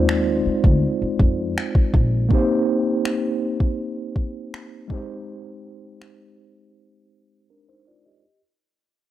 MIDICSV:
0, 0, Header, 1, 5, 480
1, 0, Start_track
1, 0, Tempo, 740741
1, 1494, Time_signature, 4, 2, 24, 8
1, 5902, End_track
2, 0, Start_track
2, 0, Title_t, "Tine electric piano"
2, 0, Program_c, 0, 4
2, 0, Control_c, 0, 64, 127
2, 0, Note_on_c, 0, 56, 70
2, 0, Note_on_c, 0, 60, 65
2, 0, Note_on_c, 0, 63, 62
2, 0, Note_on_c, 0, 65, 65
2, 0, Note_on_c, 0, 72, 81
2, 1462, Note_off_c, 0, 56, 0
2, 1466, Note_off_c, 0, 60, 0
2, 1471, Note_off_c, 0, 63, 0
2, 1475, Note_off_c, 0, 65, 0
2, 1480, Note_off_c, 0, 72, 0
2, 1482, Note_on_c, 0, 58, 72
2, 1491, Note_on_c, 0, 60, 67
2, 1501, Control_c, 0, 64, 0
2, 1501, Note_on_c, 0, 63, 68
2, 1509, Note_on_c, 0, 67, 64
2, 1519, Note_on_c, 0, 72, 74
2, 1598, Control_c, 0, 64, 127
2, 3142, Note_off_c, 0, 58, 0
2, 3146, Note_off_c, 0, 60, 0
2, 3151, Note_off_c, 0, 63, 0
2, 3156, Note_off_c, 0, 67, 0
2, 3160, Note_off_c, 0, 72, 0
2, 3162, Note_on_c, 0, 56, 69
2, 3171, Note_on_c, 0, 60, 65
2, 3180, Note_on_c, 0, 63, 66
2, 3182, Control_c, 0, 64, 0
2, 3189, Note_on_c, 0, 67, 65
2, 3198, Note_on_c, 0, 72, 77
2, 3285, Control_c, 0, 64, 127
2, 4822, Note_off_c, 0, 56, 0
2, 4826, Note_off_c, 0, 60, 0
2, 4831, Note_off_c, 0, 63, 0
2, 4835, Note_off_c, 0, 67, 0
2, 4840, Note_off_c, 0, 72, 0
2, 4861, Note_on_c, 0, 70, 58
2, 4865, Note_on_c, 0, 62, 49
2, 4971, Note_off_c, 0, 70, 0
2, 4974, Note_off_c, 0, 62, 0
2, 4981, Note_on_c, 0, 72, 68
2, 4984, Note_on_c, 0, 63, 55
2, 5091, Note_off_c, 0, 72, 0
2, 5093, Note_off_c, 0, 63, 0
2, 5102, Note_on_c, 0, 74, 65
2, 5105, Note_on_c, 0, 65, 56
2, 5212, Note_off_c, 0, 74, 0
2, 5214, Note_off_c, 0, 65, 0
2, 5221, Note_on_c, 0, 75, 60
2, 5224, Note_on_c, 0, 67, 49
2, 5341, Control_c, 0, 64, 0
2, 5445, Note_off_c, 0, 75, 0
2, 5447, Note_off_c, 0, 67, 0
2, 5902, End_track
3, 0, Start_track
3, 0, Title_t, "Upright bass"
3, 0, Program_c, 1, 32
3, 0, Note_on_c, 1, 39, 78
3, 269, Note_off_c, 1, 39, 0
3, 417, Note_on_c, 1, 38, 86
3, 525, Note_off_c, 1, 38, 0
3, 776, Note_on_c, 1, 41, 81
3, 995, Note_off_c, 1, 41, 0
3, 1257, Note_on_c, 1, 34, 88
3, 1475, Note_off_c, 1, 34, 0
3, 5902, End_track
4, 0, Start_track
4, 0, Title_t, "Muted upright bass strokes"
4, 297, Note_on_c, 9, 29, 42
4, 362, Note_off_c, 9, 29, 0
4, 659, Note_on_c, 9, 29, 44
4, 724, Note_off_c, 9, 29, 0
4, 5902, End_track
5, 0, Start_track
5, 0, Title_t, "Drums"
5, 58, Note_on_c, 9, 26, 101
5, 123, Note_off_c, 9, 26, 0
5, 414, Note_on_c, 9, 36, 82
5, 479, Note_off_c, 9, 36, 0
5, 774, Note_on_c, 9, 36, 78
5, 839, Note_off_c, 9, 36, 0
5, 1022, Note_on_c, 9, 26, 109
5, 1086, Note_off_c, 9, 26, 0
5, 1134, Note_on_c, 9, 36, 83
5, 1199, Note_off_c, 9, 36, 0
5, 1255, Note_on_c, 9, 36, 92
5, 1320, Note_off_c, 9, 36, 0
5, 1494, Note_on_c, 9, 36, 101
5, 1559, Note_off_c, 9, 36, 0
5, 1979, Note_on_c, 9, 26, 111
5, 2044, Note_off_c, 9, 26, 0
5, 2334, Note_on_c, 9, 36, 81
5, 2399, Note_off_c, 9, 36, 0
5, 2694, Note_on_c, 9, 36, 79
5, 2759, Note_off_c, 9, 36, 0
5, 2942, Note_on_c, 9, 26, 107
5, 3007, Note_off_c, 9, 26, 0
5, 3175, Note_on_c, 9, 36, 93
5, 3240, Note_off_c, 9, 36, 0
5, 3898, Note_on_c, 9, 26, 103
5, 3963, Note_off_c, 9, 26, 0
5, 5902, End_track
0, 0, End_of_file